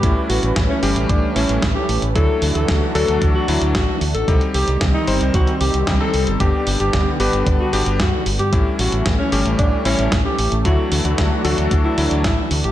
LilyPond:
<<
  \new Staff \with { instrumentName = "Alto saxophone" } { \time 4/4 \key a \dorian \tempo 4 = 113 g'16 r16 fis'8 r16 cis'8 r16 d'8 cis'8 r16 g'8 r16 | a'8 r16 a'8 r16 a'8 r16 fis'8 r16 fis'8 r16 a'16~ | a'16 r16 g'8 r16 ees'8 r16 fis'8 g'8 r16 a'8 r16 | g'8 r16 g'8 r16 g'8 r16 fis'8 r16 fis'8 r16 g'16~ |
g'16 r16 fis'8 r16 cis'8 r16 d'8 cis'8 r16 g'8 r16 | fis'8 r16 fis'8 r16 fis'8 r16 e'8 r16 e'8 r16 g'16 | }
  \new Staff \with { instrumentName = "Electric grand piano" } { \time 4/4 \key a \dorian <g a cis' e'>4. <g a cis' g'>4 <g a cis' e'>8 r4 | <fis a d' e'>4. <fis a d' a'>4 <fis a d' e'>8 r4 | <g c' ees' g'>4. <g c' ees' c''>4 r8 <g c' ees' g'>16 <g c' ees' a'>8. | <g b d' g'>4. <g b d' b'>4 <g b d' g'>8 r4 |
<g a cis' e'>4. <g a cis' g'>4 <g a cis' e'>8 r4 | <fis a d' e'>4. <fis a d' a'>4 <fis a d' e'>8 r4 | }
  \new Staff \with { instrumentName = "Analog synth pad" } { \time 4/4 \key a \dorian << { <e cis' b'>1 | <e d' fis'>1 | <ees c'>1 | <d b>1 |
<e cis'>1 | <e d' fis'>1 | } \\ { a1~ | a1 | g1~ | g1 |
a1~ | a1 | } >> }
  \new Staff \with { instrumentName = "Fingered electric bass" } { \clef bass \time 4/4 \key a \dorian a,,16 r16 a,,16 a,,16 a,,16 r16 g,,16 a,,16 a,,16 r16 a,,16 a,,16 a,,16 r16 a,,16 a,,16 | d,16 r16 d,16 d,16 d,16 r16 d,16 d,16 d,16 r16 d,16 d,16 a,,16 r16 d,16 a,,16 | c,16 r16 c,16 c,16 c,16 r16 g,,16 c,16 c,16 r16 c,16 c,16 c,16 r16 c,16 g,,16 | g,,16 r16 g,,16 g,,16 g,,16 r16 g,,16 g,,16 g,,16 r16 g,,16 g,,16 g,16 r16 g,,16 g,16 |
a,,16 r16 a,,16 a,,16 a,,16 r16 g,,16 a,,16 a,,16 r16 a,,16 a,,16 a,,16 r16 a,,16 a,,16 | d,16 r16 d,16 d,16 d,16 r16 d,16 d,16 d,16 r16 d,16 d,16 a,,16 r16 d,16 a,,16 | }
  \new DrumStaff \with { instrumentName = "Drums" } \drummode { \time 4/4 <hh bd>8 hho16 hh16 <hh bd sn>8 hho16 hh16 <hh bd>8 hho16 hh16 <hh bd sn>8 hho16 hh16 | <hh bd>8 hho16 hh16 <hh bd sn>8 hho16 hh16 <hh bd>8 hho16 hh16 <hh bd sn>8 hho16 hh16 | <hh bd>16 hh16 hho16 hh16 <hh bd sn>8 hho16 hh16 <hh bd>16 hh16 hho16 hh16 <hh bd sn>8 hho16 hh16 | <hh bd>8 hho16 hh16 <hh bd sn>8 hho16 hh16 <hh bd>8 hho16 hh16 <hh bd sn>8 hho16 hh16 |
<hh bd>8 hho16 hh16 <hh bd sn>8 hho16 hh16 <hh bd>8 hho16 hh16 <hh bd sn>8 hho16 hh16 | <hh bd>8 hho16 hh16 <hh bd sn>8 hho16 hh16 <hh bd>8 hho16 hh16 <hh bd sn>8 hho16 hh16 | }
>>